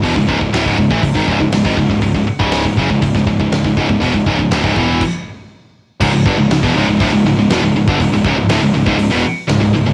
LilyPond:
<<
  \new Staff \with { instrumentName = "Distorted electric guitar" } { \clef bass \time 4/4 \key cis \minor \tempo 4 = 120 <e, b,>16 <cis, gis,>16 <cis, gis,>16 <cis, gis,>16 <d, a,>16 <cis, gis,>16 <cis, gis,>16 <a, e>16 <cis, gis,>16 <gis, dis>16 <cis, gis,>16 <cis, gis,>16 <cis, gis,>16 <gis, dis>16 <cis, gis,>16 <cis, gis,>16 | <cis, gis,>16 <cis, gis,>16 r16 <cis, gis, cis>8 <cis, gis,>16 <fis, cis>16 <cis, gis,>16 <cis, gis,>16 <cis, gis,>16 <cis, gis,>16 <cis, gis,>16 <cis, gis,>16 <cis, gis,>16 <cis, gis,>16 <cis, gis,>16 | <e, b,>16 <cis, gis,>16 <cis, gis,>16 <cis, gis,>16 <d, a,>16 <cis, gis,>16 <e, b, e>8 r2 | <cis, gis,>16 <cis, gis,>16 <g, d>16 <cis, gis,>16 <cis, gis,>16 <e, b,>16 <cis, gis,>16 <cis, gis,>16 <d, a,>16 <cis, gis,>16 <cis, gis,>16 <cis, gis,>16 <e, b,>16 <cis, gis,>16 <cis, gis,>16 <g, d>16 |
<cis, gis,>16 <cis, gis,>16 <cis, gis,>16 <cis, gis,>16 <d, a,>16 <cis, gis,>16 <cis, gis,>16 <cis, gis,>16 <cis, gis,>16 <e, b,>16 r8 <cis, gis,>16 <cis, gis,>16 <cis, gis,>16 <cis, gis,>16 | }
  \new Staff \with { instrumentName = "Distorted electric guitar" } { \clef bass \time 4/4 \key cis \minor <e, b,>16 <cis, gis,>16 <cis, gis,>16 <cis, gis,>16 <d, a,>16 <cis, gis,>16 <cis, gis,>16 <a, e>16 <cis, gis,>16 <gis, dis>16 <cis, gis,>16 <cis, gis,>16 <cis, gis,>16 <gis, dis>16 <cis, gis,>16 <cis, gis,>16 | <cis, gis,>16 <cis, gis,>16 r16 <cis, gis, cis>8 <cis, gis,>16 <fis, cis>16 <cis, gis,>16 <cis, gis,>16 <cis, gis,>16 <cis, gis,>16 <cis, gis,>16 <cis, gis,>16 <cis, gis,>16 <cis, gis,>16 <cis, gis,>16 | <e, b,>16 <cis, gis,>16 <cis, gis,>16 <cis, gis,>16 <d, a,>16 <cis, gis,>16 <e, b, e>8 r2 | <cis, gis,>16 <cis, gis,>16 <g, d>16 <cis, gis,>16 <cis, gis,>16 <e, b,>16 <cis, gis,>16 <cis, gis,>16 <d, a,>16 <cis, gis,>16 <cis, gis,>16 <cis, gis,>16 <e, b,>16 <cis, gis,>16 <cis, gis,>16 <g, d>16 |
<cis, gis,>16 <cis, gis,>16 <cis, gis,>16 <cis, gis,>16 <d, a,>16 <cis, gis,>16 <cis, gis,>16 <cis, gis,>16 <cis, gis,>16 <e, b,>16 r8 <cis, gis,>16 <cis, gis,>16 <cis, gis,>16 <cis, gis,>16 | }
  \new Staff \with { instrumentName = "Distorted electric guitar" } { \clef bass \time 4/4 \key cis \minor r1 | r1 | r1 | <cis, gis,>16 <cis, gis,>16 <g, d>16 <cis, gis,>16 <cis, gis,>16 <e, b,>16 <cis, gis,>16 <cis, gis,>16 <d, a,>16 <cis, gis,>16 <cis, gis,>16 <cis, gis,>16 <e, b,>16 <cis, gis,>16 <cis, gis,>16 <g, d>16 |
<cis, gis,>16 <cis, gis,>16 <cis, gis,>16 <cis, gis,>16 <d, a,>16 <cis, gis,>16 <cis, gis,>16 <cis, gis,>16 <cis, gis,>16 <e, b,>16 r8 <cis, gis,>16 <cis, gis,>16 <cis, gis,>16 <cis, gis,>16 | }
  \new Staff \with { instrumentName = "Picked electric bass" } { \clef bass \time 4/4 \key cis \minor e,,16 cis,,16 cis,,16 cis,,16 d,,16 cis,,16 cis,,16 a,,16 cis,,16 gis,,16 cis,,16 cis,,16 cis,,16 gis,,16 cis,,16 cis,,16 | cis,,16 cis,,16 r16 cis,,8 cis,,16 fis,,16 cis,,16 cis,,16 cis,,16 cis,,16 cis,,16 cis,,16 cis,,16 cis,,16 cis,,16 | e,,16 cis,,16 cis,,16 cis,,16 d,,16 cis,,16 e,,8 r2 | cis,,16 cis,,16 g,,16 cis,,16 cis,,16 e,,16 cis,,16 cis,,16 d,,16 cis,,16 cis,,16 cis,,16 e,,16 cis,,16 cis,,16 g,,16 |
cis,,16 cis,,16 cis,,16 cis,,16 d,,16 cis,,16 cis,,16 cis,,16 cis,,16 e,,16 r8 cis,,16 cis,,16 cis,,16 cis,,16 | }
  \new DrumStaff \with { instrumentName = "Drums" } \drummode { \time 4/4 <hho bd>16 bd16 bd16 bd16 <hho sn>16 bd16 bd16 bd16 <hho bd>16 bd16 bd16 bd16 <hho sn>16 bd16 bd16 bd16 | <hho bd>16 bd8 bd16 <hho sn>16 bd16 bd16 bd16 <hho bd>16 <bd sn>16 bd16 bd16 <hho sn>16 bd16 bd16 bd16 | <hho bd>16 bd16 bd16 bd16 <hho sn>16 bd16 bd8 <cymc bd>4 r4 | <cymc bd>8 bd8 <hho sn>16 bd8. <hho bd>4 <hho sn>8. bd16 |
<hho bd>8 bd8 <hho sn>8. bd16 hho4 <hho sn>4 | }
>>